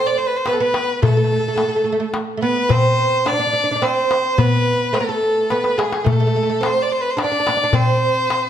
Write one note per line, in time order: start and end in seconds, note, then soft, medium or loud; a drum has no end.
0.07 0.19 D5 medium
0.18 0.28 C5 medium
0.18 darbuka ka soft
0.27 0.38 B4 medium
0.37 0.49 C5 medium
0.46 0.59 B3 medium
0.46 0.54 B4 medium
0.46 darbuka tek medium
0.53 0.63 A4 medium
0.60 1.02 B3 medium
0.60 1.02 B4 medium
0.74 darbuka tek medium
1.02 1.07 A3 medium
1.02 2.11 A4 medium
1.02 darbuka dum medium
1.08 1.15 A3 soft
1.17 1.23 A3 medium
1.24 1.31 A3 soft
1.30 1.38 A3 soft
1.30 darbuka ka soft
1.39 1.46 A3 soft
1.48 1.54 A3 soft
1.56 1.62 A3 soft
1.56 darbuka tek medium
1.63 1.67 A3 soft
1.68 1.75 A3 soft
1.76 1.83 A3 soft
1.84 1.91 A3 soft
1.84 darbuka ka soft
1.92 1.99 A3 medium
2.00 2.06 A3 soft
2.14 darbuka tek medium
2.37 2.42 A3 medium
2.42 2.71 B3 medium
2.42 2.73 B4 medium
2.69 3.25 C4 medium
2.69 3.29 C5 loud
2.69 darbuka dum medium
2.99 darbuka ka soft
3.26 3.32 D4 medium
3.26 3.85 D5 loud
3.26 darbuka tek medium
3.33 3.38 D4 medium
3.39 3.46 D4 medium
3.47 3.52 D4 medium
3.53 3.62 D4 medium
3.53 darbuka ka soft
3.64 3.70 D4 medium
3.71 3.74 D4 medium
3.76 3.81 D4 medium
3.82 4.40 C4 medium
3.82 4.40 C5 medium
3.82 darbuka tek medium
4.11 darbuka tek medium
4.38 4.92 B3 medium
4.38 4.95 B4 loud
4.38 darbuka dum medium
4.67 darbuka ka soft
4.93 5.00 A3 medium
4.93 5.52 A4 medium
4.93 darbuka tek medium
5.01 5.08 B3 medium
5.09 5.51 A3 medium
5.23 darbuka ka soft
5.50 5.77 B3 medium
5.50 5.79 B4 medium
5.50 darbuka tek medium
5.64 darbuka ka medium
5.78 6.04 G#3 medium
5.78 6.09 G#4 medium
5.78 darbuka tek medium
5.92 darbuka ka medium
6.04 6.11 A3 medium
6.04 6.66 A4 medium
6.04 darbuka dum medium
6.13 6.19 A3 soft
6.20 6.26 A3 medium
6.27 6.35 A3 soft
6.35 6.42 A3 medium
6.35 darbuka ka soft
6.43 6.48 A3 soft
6.50 6.58 A3 medium
6.61 6.80 C4 medium
6.61 6.84 C5 medium
6.61 darbuka tek medium
6.82 6.94 D5 medium
6.92 7.03 C5 medium
6.92 darbuka ka soft
7.01 7.12 B4 medium
7.10 7.19 C5 medium
7.17 7.23 D4 medium
7.17 7.77 D5 medium
7.17 darbuka tek medium
7.24 7.30 D4 medium
7.32 7.39 D4 medium
7.40 7.47 D4 medium
7.47 7.55 D4 medium
7.47 darbuka tek medium
7.57 7.62 D4 medium
7.64 7.71 D4 medium
7.73 8.50 C4 medium
7.73 8.50 C5 medium
7.73 darbuka dum medium
8.03 darbuka ka soft
8.30 darbuka tek medium